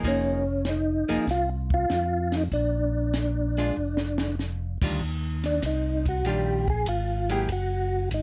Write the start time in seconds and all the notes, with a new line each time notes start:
0.04 F1 F3 A#3 D#4 G#4, kick, open hi-hat
0.08 C#4
0.65 D#4, snare, closed hi-hat
1.09 F1 F3 A#3 D#4 G#4
1.27 C2 F4, kick, snare, open hi-hat
1.70 F4, kick
1.90 F2, snare, closed hi-hat
2.32 D#4, snare, open hi-hat
2.52 A#1 D4, kick, open hi-hat
3.14 snare, closed hi-hat
3.57 G#3 D4 F4, open hi-hat
3.77 F1
3.97 snare
4.18 snare
4.39 snare
4.82 D2 D#3 G3 D4 F4, kick, crash
5.01 D#2, kick
5.44 D4, snare, ride
5.62 C2 D#4, kick, snare, hi-hat pedal, ride
6.06 F#4, kick, ride
6.25 A#1 D#3 G3 D4 F4 G4, kick, ride
6.68 G#4, kick
6.86 G#1 F4, kick, hi-hat pedal, ride
7.29 F#3 A#3 E4 G4 G#4, ride
7.49 F#1 F#4, kick, ride
8.11 G#1 D#4, kick, hi-hat pedal, ride